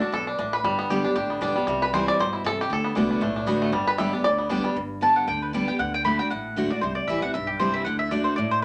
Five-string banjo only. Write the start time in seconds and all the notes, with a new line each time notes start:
Already playing: A4
0.02 D4
0.14 A4
0.27 D4
0.39 D4
0.53 B4
0.65 G3
0.79 B3
0.90 G4
1.04 D4
1.16 G4
1.30 B3
1.42 D4
1.55 G3
1.67 G3
1.82 B4
1.94 C5
2.08 D5
2.20 C5
2.33 E4
2.46 A4
2.61 G4
2.73 A4
2.84 B3
2.96 D4
3.11 D4
3.22 A3
3.36 D4
3.47 B3
3.62 A3
3.73 G3
3.87 B4
3.98 E5
4.13 D4
4.24 D5
4.38 B3
4.50 D4
4.64 G3